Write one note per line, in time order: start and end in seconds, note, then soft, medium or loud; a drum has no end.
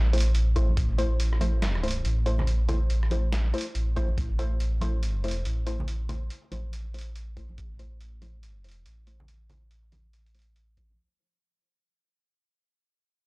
0.00 0.76 A1 loud
0.00 0.11 A3 medium
0.00 0.11 E4 medium
0.00 0.11 C5 loud
0.13 0.25 A3 medium
0.13 0.25 E4 medium
0.13 0.25 C5 medium
0.13 closed hi-hat medium
0.18 closed hi-hat medium
0.20 closed hi-hat medium
0.35 closed hi-hat medium
0.56 0.73 A3 medium
0.56 0.73 E4 medium
0.56 0.73 C5 loud
0.56 kick medium
0.56 closed hi-hat medium
0.69 high conga medium
0.77 2.03 A1 medium
0.77 kick loud
0.77 closed hi-hat medium
0.98 1.39 A3 medium
0.98 1.39 E4 medium
0.98 1.39 C5 loud
0.98 closed hi-hat soft
1.20 closed hi-hat medium
1.33 cross-stick soft
1.41 1.82 A3 medium
1.41 1.82 E4 medium
1.41 1.82 C5 loud
1.41 closed hi-hat medium
1.41 high conga medium
1.62 snare loud
1.62 closed hi-hat medium
1.75 cross-stick medium
1.83 1.95 A3 medium
1.83 1.96 E4 medium
1.83 1.95 C5 medium
1.83 closed hi-hat soft
1.88 closed hi-hat medium
1.91 closed hi-hat medium
2.05 2.89 A1 loud
2.05 closed hi-hat medium
2.26 2.43 A3 medium
2.26 2.43 E4 medium
2.26 2.43 C5 loud
2.26 closed hi-hat soft
2.38 cross-stick soft
2.38 high conga medium
2.38 low conga medium
2.47 closed hi-hat medium
2.69 3.09 A3 medium
2.69 3.09 E4 medium
2.69 3.09 C5 loud
2.69 closed hi-hat soft
2.69 low conga medium
2.90 3.52 A1 loud
2.90 closed hi-hat medium
3.03 cross-stick medium
3.11 3.52 A3 medium
3.11 3.52 E4 medium
3.11 3.52 C5 medium
3.11 closed hi-hat medium
3.11 high conga medium
3.32 snare loud
3.32 closed hi-hat medium
3.54 3.66 A3 medium
3.54 3.66 E4 medium
3.54 3.66 C5 loud
3.54 closed hi-hat soft
3.58 closed hi-hat medium
3.61 closed hi-hat medium
3.75 4.16 A1 medium
3.75 closed hi-hat medium
3.96 4.08 A3 loud
3.96 4.08 E4 medium
3.96 4.08 C5 loud
3.96 kick medium
3.96 closed hi-hat soft
4.09 high conga medium
4.18 5.44 A1 medium
4.18 kick loud
4.18 closed hi-hat medium
4.39 4.79 A3 medium
4.39 4.79 E4 medium
4.39 4.79 C5 loud
4.39 closed hi-hat soft
4.60 closed hi-hat medium
4.81 5.22 A3 medium
4.81 5.22 E4 medium
4.81 5.22 C5 loud
4.81 closed hi-hat medium
4.81 high conga medium
5.03 closed hi-hat medium
5.24 5.36 A3 medium
5.24 5.36 E4 medium
5.24 5.36 C5 medium
5.24 closed hi-hat soft
5.28 closed hi-hat medium
5.31 closed hi-hat medium
5.45 6.29 A1 loud
5.45 closed hi-hat medium
5.67 5.84 A3 medium
5.67 5.84 E4 medium
5.67 5.84 C5 loud
5.67 closed hi-hat soft
5.79 high conga medium
5.79 low conga medium
5.88 closed hi-hat medium
6.09 6.50 A3 medium
6.09 6.50 E4 medium
6.09 6.50 C5 loud
6.09 closed hi-hat soft
6.09 low conga medium
6.30 closed hi-hat medium
6.52 7.57 A1 loud
6.52 6.92 A3 medium
6.52 6.92 E4 medium
6.52 6.92 C5 medium
6.52 closed hi-hat medium
6.52 high conga medium
6.73 closed hi-hat medium
6.94 7.06 A3 medium
6.94 7.06 E4 medium
6.94 7.06 C5 medium
6.94 closed hi-hat soft
6.99 closed hi-hat medium
7.01 closed hi-hat medium
7.16 closed hi-hat medium
7.37 7.54 A3 medium
7.37 7.54 E4 medium
7.37 7.54 C5 loud
7.37 kick medium
7.37 closed hi-hat soft
7.49 high conga soft
7.58 8.84 A1 medium
7.58 kick loud
7.58 closed hi-hat medium
7.79 8.20 A3 medium
7.79 8.20 E4 medium
7.79 8.20 C5 loud
7.79 closed hi-hat medium
8.01 closed hi-hat medium
8.22 8.62 A3 medium
8.22 8.62 E4 medium
8.22 8.62 C5 medium
8.22 closed hi-hat medium
8.22 high conga medium
8.43 closed hi-hat medium
8.64 8.76 A3 medium
8.64 8.76 E4 medium
8.64 8.76 C5 medium
8.64 closed hi-hat soft
8.69 closed hi-hat medium
8.71 closed hi-hat medium
8.86 9.69 A1 medium
8.86 closed hi-hat medium
9.07 9.24 A3 medium
9.07 9.24 E4 medium
9.07 9.24 C5 loud
9.07 closed hi-hat medium
9.20 high conga soft
9.20 low conga medium
9.28 closed hi-hat medium
9.49 9.90 A3 medium
9.49 9.90 E4 medium
9.49 9.90 C5 loud
9.49 closed hi-hat medium
9.49 low conga medium
9.71 10.54 A1 medium
9.71 closed hi-hat medium
9.92 10.33 A3 medium
9.92 10.33 E4 medium
9.92 10.33 C5 medium
9.92 closed hi-hat medium
9.92 high conga medium
9.92 low conga medium
10.13 closed hi-hat medium
10.26 closed hi-hat soft
10.35 10.47 A3 medium
10.35 10.47 E4 medium
10.35 10.47 C5 loud
10.35 closed hi-hat soft
10.39 closed hi-hat medium
10.42 closed hi-hat medium
10.56 10.97 A1 loud
10.56 closed hi-hat medium
10.77 10.89 A3 medium
10.77 10.89 E4 medium
10.77 10.89 C5 loud
10.77 kick medium
10.77 closed hi-hat medium
10.90 high conga medium